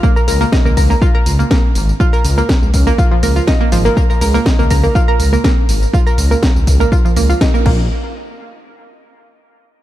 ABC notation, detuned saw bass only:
X:1
M:4/4
L:1/16
Q:1/4=122
K:Db
V:1 name="Detuned saw bass" clef=bass
z2 D,, z2 D,, D,, z3 D,, z3 A,,, z | z2 D,, z2 D,, D,, z3 D,, z3 A,,, z | z2 D,, z2 D,, D,, z3 D,, z3 A,,, z | z2 D,, z2 D,, D,, z3 D,, z3 B,,,2 |
z16 |]